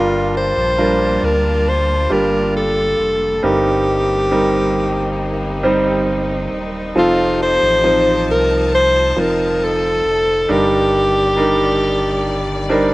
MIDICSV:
0, 0, Header, 1, 5, 480
1, 0, Start_track
1, 0, Key_signature, -2, "minor"
1, 0, Tempo, 882353
1, 1869, Time_signature, 4, 2, 24, 8
1, 7038, End_track
2, 0, Start_track
2, 0, Title_t, "Alto saxophone"
2, 0, Program_c, 0, 65
2, 0, Note_on_c, 0, 65, 70
2, 178, Note_off_c, 0, 65, 0
2, 201, Note_on_c, 0, 72, 85
2, 674, Note_on_c, 0, 70, 71
2, 682, Note_off_c, 0, 72, 0
2, 916, Note_on_c, 0, 72, 84
2, 924, Note_off_c, 0, 70, 0
2, 1153, Note_on_c, 0, 70, 68
2, 1161, Note_off_c, 0, 72, 0
2, 1391, Note_off_c, 0, 70, 0
2, 1395, Note_on_c, 0, 69, 80
2, 1871, Note_on_c, 0, 67, 72
2, 1879, Note_off_c, 0, 69, 0
2, 3310, Note_off_c, 0, 67, 0
2, 3798, Note_on_c, 0, 65, 80
2, 4017, Note_off_c, 0, 65, 0
2, 4039, Note_on_c, 0, 72, 94
2, 4492, Note_off_c, 0, 72, 0
2, 4519, Note_on_c, 0, 70, 74
2, 4737, Note_off_c, 0, 70, 0
2, 4758, Note_on_c, 0, 72, 84
2, 5002, Note_on_c, 0, 70, 72
2, 5010, Note_off_c, 0, 72, 0
2, 5243, Note_on_c, 0, 69, 87
2, 5251, Note_off_c, 0, 70, 0
2, 5721, Note_on_c, 0, 67, 78
2, 5729, Note_off_c, 0, 69, 0
2, 7038, Note_off_c, 0, 67, 0
2, 7038, End_track
3, 0, Start_track
3, 0, Title_t, "Grand piano"
3, 0, Program_c, 1, 0
3, 0, Note_on_c, 1, 43, 48
3, 0, Note_on_c, 1, 55, 54
3, 0, Note_on_c, 1, 62, 49
3, 0, Note_on_c, 1, 65, 46
3, 0, Note_on_c, 1, 70, 55
3, 65, Control_c, 1, 64, 127
3, 401, Note_off_c, 1, 55, 0
3, 402, Note_off_c, 1, 62, 0
3, 404, Note_off_c, 1, 65, 0
3, 405, Note_off_c, 1, 70, 0
3, 424, Note_on_c, 1, 55, 50
3, 426, Note_on_c, 1, 62, 49
3, 429, Note_on_c, 1, 65, 49
3, 432, Note_on_c, 1, 70, 63
3, 646, Note_off_c, 1, 43, 0
3, 1110, Note_off_c, 1, 55, 0
3, 1111, Note_off_c, 1, 62, 0
3, 1113, Note_off_c, 1, 65, 0
3, 1114, Note_off_c, 1, 70, 0
3, 1139, Note_on_c, 1, 55, 50
3, 1142, Note_on_c, 1, 62, 45
3, 1143, Note_on_c, 1, 65, 45
3, 1145, Note_on_c, 1, 67, 56
3, 1828, Note_off_c, 1, 55, 0
3, 1830, Note_off_c, 1, 62, 0
3, 1830, Note_off_c, 1, 65, 0
3, 1831, Note_off_c, 1, 67, 0
3, 1863, Note_on_c, 1, 55, 58
3, 1865, Note_on_c, 1, 60, 51
3, 1867, Note_on_c, 1, 43, 52
3, 1868, Note_on_c, 1, 63, 51
3, 1870, Note_on_c, 1, 70, 61
3, 1877, Control_c, 1, 64, 0
3, 1986, Control_c, 1, 64, 127
3, 2322, Note_off_c, 1, 55, 0
3, 2323, Note_off_c, 1, 60, 0
3, 2325, Note_off_c, 1, 63, 0
3, 2325, Note_off_c, 1, 70, 0
3, 2345, Note_on_c, 1, 55, 57
3, 2348, Note_on_c, 1, 60, 52
3, 2348, Note_on_c, 1, 63, 51
3, 2351, Note_on_c, 1, 70, 64
3, 2566, Note_off_c, 1, 43, 0
3, 3031, Note_off_c, 1, 55, 0
3, 3032, Note_off_c, 1, 60, 0
3, 3033, Note_off_c, 1, 63, 0
3, 3034, Note_off_c, 1, 70, 0
3, 3064, Note_on_c, 1, 55, 66
3, 3067, Note_on_c, 1, 60, 58
3, 3070, Note_on_c, 1, 63, 58
3, 3070, Note_on_c, 1, 72, 69
3, 3750, Note_off_c, 1, 55, 0
3, 3752, Note_off_c, 1, 60, 0
3, 3753, Note_off_c, 1, 63, 0
3, 3754, Note_off_c, 1, 72, 0
3, 3784, Note_on_c, 1, 53, 60
3, 3786, Note_on_c, 1, 60, 55
3, 3790, Note_on_c, 1, 63, 53
3, 3792, Note_on_c, 1, 69, 66
3, 3796, Control_c, 1, 64, 0
3, 3894, Control_c, 1, 64, 127
3, 4242, Note_off_c, 1, 53, 0
3, 4244, Note_off_c, 1, 60, 0
3, 4245, Note_off_c, 1, 63, 0
3, 4247, Note_off_c, 1, 69, 0
3, 4264, Note_on_c, 1, 53, 59
3, 4267, Note_on_c, 1, 60, 51
3, 4268, Note_on_c, 1, 63, 57
3, 4271, Note_on_c, 1, 72, 63
3, 4950, Note_off_c, 1, 53, 0
3, 4952, Note_off_c, 1, 60, 0
3, 4953, Note_off_c, 1, 63, 0
3, 4954, Note_off_c, 1, 72, 0
3, 4986, Note_on_c, 1, 53, 52
3, 4989, Note_on_c, 1, 60, 45
3, 4991, Note_on_c, 1, 63, 47
3, 4995, Note_on_c, 1, 72, 60
3, 5671, Note_off_c, 1, 53, 0
3, 5673, Note_off_c, 1, 60, 0
3, 5674, Note_off_c, 1, 63, 0
3, 5676, Note_off_c, 1, 72, 0
3, 5703, Note_on_c, 1, 55, 58
3, 5707, Note_on_c, 1, 62, 55
3, 5708, Note_on_c, 1, 63, 50
3, 5710, Note_on_c, 1, 43, 52
3, 5711, Note_on_c, 1, 70, 65
3, 5716, Control_c, 1, 64, 0
3, 5809, Control_c, 1, 64, 127
3, 6162, Note_off_c, 1, 55, 0
3, 6164, Note_off_c, 1, 62, 0
3, 6164, Note_off_c, 1, 63, 0
3, 6166, Note_off_c, 1, 70, 0
3, 6181, Note_on_c, 1, 55, 55
3, 6185, Note_on_c, 1, 62, 55
3, 6187, Note_on_c, 1, 63, 52
3, 6188, Note_on_c, 1, 70, 61
3, 6407, Note_off_c, 1, 43, 0
3, 6869, Note_off_c, 1, 55, 0
3, 6871, Note_off_c, 1, 62, 0
3, 6872, Note_off_c, 1, 63, 0
3, 6873, Note_off_c, 1, 70, 0
3, 6904, Note_on_c, 1, 55, 58
3, 6907, Note_on_c, 1, 62, 61
3, 6908, Note_on_c, 1, 72, 55
3, 6909, Note_on_c, 1, 63, 54
3, 6911, Note_on_c, 1, 70, 69
3, 7020, Note_off_c, 1, 72, 0
3, 7038, Note_off_c, 1, 55, 0
3, 7038, Note_off_c, 1, 62, 0
3, 7038, Note_off_c, 1, 63, 0
3, 7038, Note_off_c, 1, 70, 0
3, 7038, End_track
4, 0, Start_track
4, 0, Title_t, "String section"
4, 0, Program_c, 2, 48
4, 0, Note_on_c, 2, 55, 57
4, 0, Note_on_c, 2, 58, 64
4, 0, Note_on_c, 2, 62, 49
4, 0, Note_on_c, 2, 65, 55
4, 0, Note_on_c, 2, 81, 54
4, 1850, Note_off_c, 2, 55, 0
4, 1850, Note_off_c, 2, 58, 0
4, 1850, Note_off_c, 2, 65, 0
4, 1850, Note_off_c, 2, 81, 0
4, 1852, Note_off_c, 2, 62, 0
4, 1868, Note_on_c, 2, 63, 67
4, 1869, Note_on_c, 2, 58, 58
4, 1869, Note_on_c, 2, 60, 51
4, 3770, Note_off_c, 2, 58, 0
4, 3793, Note_on_c, 2, 53, 61
4, 3793, Note_on_c, 2, 67, 59
4, 3793, Note_on_c, 2, 81, 70
4, 4741, Note_off_c, 2, 67, 0
4, 4749, Note_on_c, 2, 65, 54
4, 5686, Note_off_c, 2, 63, 0
4, 5687, Note_off_c, 2, 60, 0
4, 5692, Note_off_c, 2, 53, 0
4, 5692, Note_off_c, 2, 81, 0
4, 5699, Note_off_c, 2, 65, 0
4, 5708, Note_on_c, 2, 51, 60
4, 5709, Note_on_c, 2, 55, 54
4, 5709, Note_on_c, 2, 74, 69
4, 7038, Note_off_c, 2, 51, 0
4, 7038, Note_off_c, 2, 55, 0
4, 7038, Note_off_c, 2, 74, 0
4, 7038, End_track
5, 0, Start_track
5, 0, Title_t, "Sub bass"
5, 0, Program_c, 3, 38
5, 0, Note_on_c, 3, 31, 77
5, 287, Note_off_c, 3, 31, 0
5, 309, Note_on_c, 3, 34, 74
5, 647, Note_off_c, 3, 34, 0
5, 669, Note_on_c, 3, 38, 82
5, 1127, Note_off_c, 3, 38, 0
5, 1147, Note_on_c, 3, 31, 79
5, 1606, Note_off_c, 3, 31, 0
5, 1628, Note_on_c, 3, 29, 68
5, 1851, Note_off_c, 3, 29, 0
5, 1867, Note_on_c, 3, 31, 82
5, 3526, Note_off_c, 3, 31, 0
5, 3547, Note_on_c, 3, 27, 70
5, 3771, Note_off_c, 3, 27, 0
5, 3785, Note_on_c, 3, 29, 92
5, 4125, Note_off_c, 3, 29, 0
5, 4147, Note_on_c, 3, 33, 68
5, 4508, Note_on_c, 3, 36, 87
5, 4516, Note_off_c, 3, 33, 0
5, 4967, Note_off_c, 3, 36, 0
5, 4988, Note_on_c, 3, 29, 88
5, 5447, Note_off_c, 3, 29, 0
5, 5467, Note_on_c, 3, 29, 76
5, 5691, Note_off_c, 3, 29, 0
5, 5710, Note_on_c, 3, 31, 85
5, 7038, Note_off_c, 3, 31, 0
5, 7038, End_track
0, 0, End_of_file